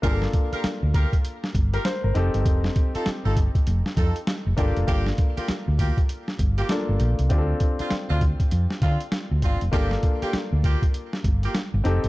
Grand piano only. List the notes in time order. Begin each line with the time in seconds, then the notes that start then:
0.02 A#3 D4 F4 G#4
0.11 A4
1.74 A#4
1.85 C5
2.04 A#4
2.14 C4 D#4 G4 A4
4.57 A#3 D4 F4 A4
6.69 A#3 D4 F4 A4
7.29 C4 D4 F4 G4
7.38 A4
9.72 A#3 D4 F4 A4
11.84 C4 D#4 G4 A4